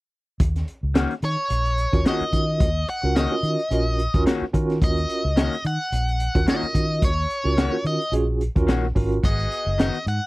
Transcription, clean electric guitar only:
0.94 D#3 A#3 C#4 F#4
2.05 D#3 A#3 C#4 F#4
3.15 D#3 A#3 C#4 F#4
4.26 D#3 A#3 C#4 F#4
5.36 D#3 A#3 C#4 F#4
6.47 D#3 A#3 C#4 F#4
7.57 D#3 A#3 C#4 F#4
8.67 D#3 A#3 C#4 F#4
9.78 D#3 B3 D#4 F#4

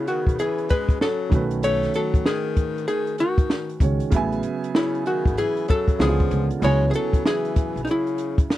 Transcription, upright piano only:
Already playing: C#3 B3 C#4 F#4 B4
1.29 D#3 A3 C#4 F#4
1.35 B4
3.81 D#3 G#3 C#4 F#4 C#5
4.10 C#3 F#3 B3
4.15 E5 G#5
5.99 D3 G#3 B3 C#4 E4
6.08 F4
6.59 C#3 F#3 B3
6.64 E4 G#5

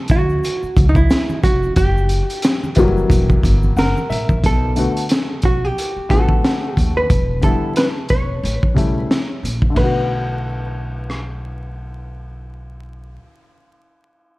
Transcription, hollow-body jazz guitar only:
0.11 F#4
0.89 D#4
0.96 E4
1.44 F#4
1.77 G4
3.79 A#4
4.46 A4
5.45 F#4
5.65 G4
6.11 A4
6.75 G4
6.97 B4
7.44 A4
7.77 B4
8.10 C#5
9.77 B4

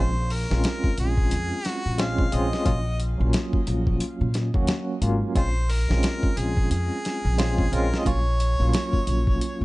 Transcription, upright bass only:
Already playing: A#1
0.51 A#1
0.98 A#1
1.32 F2
1.86 A#1
2.33 A#1
2.66 A#1
3.20 A#1
3.67 A#1
4.21 A#2
4.54 D#2
5.02 G#1
5.36 A#1
5.90 A#1
6.37 A#1
6.71 F2
7.25 A#1
7.72 A#1
8.06 A#1
8.60 A#1
9.07 A#1
9.61 A#2

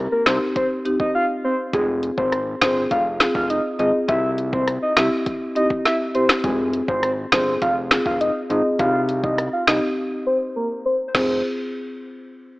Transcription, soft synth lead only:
0.12 A#4
0.27 C5
0.56 C5
1.00 D#5
1.15 F5
1.44 C5
1.74 G#4
2.18 C5
2.62 C5
2.91 F5
3.35 F5
3.50 D#5
3.79 D#5
4.09 E5
4.53 C5
4.82 D#5
4.97 E5
5.56 D#5
5.85 E5
6.15 C5
6.44 G#4
6.88 C5
7.33 C5
7.62 F5
8.06 F5
8.21 D#5
8.50 D#5
8.80 F5
9.24 D#5
9.53 F5
9.68 D#5
10.26 C5
10.56 A#4
10.85 C5
11.15 C5

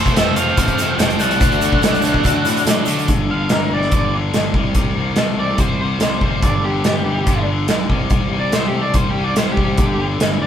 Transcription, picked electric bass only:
Already playing: F1
0.16 F1
0.36 F1
0.58 A1
0.77 F2
0.98 F1
1.19 C2
1.41 D2
1.60 D2
1.81 C2
2.01 D2
2.25 D2
2.44 A2
2.66 A2
2.87 D3
3.09 G1
3.30 G1
3.51 G1
3.71 G1
3.92 G1
4.33 G1
4.54 C2
4.75 C2
4.95 C2
5.16 C2
5.36 C2
5.58 C2
5.99 C2
6.21 F#1
6.42 G1
6.63 G1
6.84 G1
7.05 G1
7.27 G1
7.69 B1
7.90 C2
8.11 C2
8.30 C2
8.52 C2
8.72 C2
8.94 C2
9.36 C2
9.57 C2
9.79 G1
9.98 G1
10.19 G1
10.41 G1

